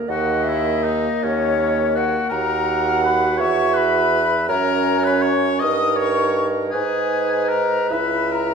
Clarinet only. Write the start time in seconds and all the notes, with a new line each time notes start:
Already playing: A#4
0.09 D#5
2.32 F#5
3.40 E5
4.49 C#5
5.61 A#4
6.73 B4
7.92 E5